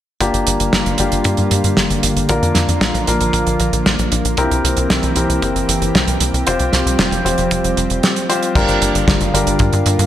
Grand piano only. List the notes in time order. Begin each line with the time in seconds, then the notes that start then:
0.21 A#3 D4 F4 G4
0.99 A#3 D4 F4 G4
2.29 A#3 D4 F4 A#4
3.08 A#3 D4 F4 A#4
4.38 C4 E4 G4 A#4
5.16 C4 E4 G4 A#4
6.47 C4 F4 G4 C5
7.25 C4 F4 G4 C5
8.29 C4 F4 G4 C5
8.55 D4 F4 G4 A#4
9.34 D4 F4 G4 A#4